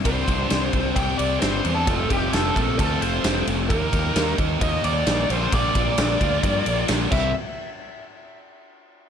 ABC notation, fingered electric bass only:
X:1
M:4/4
L:1/8
Q:1/4=132
K:F
V:1 name="Fingered electric bass" clef=bass
C,, C,, C,, C,, C,, C,, G,,, E,, | F,,, F,,, F,,, B,,, D,, F,,, F,,, F,,, | _E,, E,, E,, E,, E,, E,, B,,, B,,, | B,,, B,,, B,,, D,, G,, B,,, B,,, C,, |
z8 |]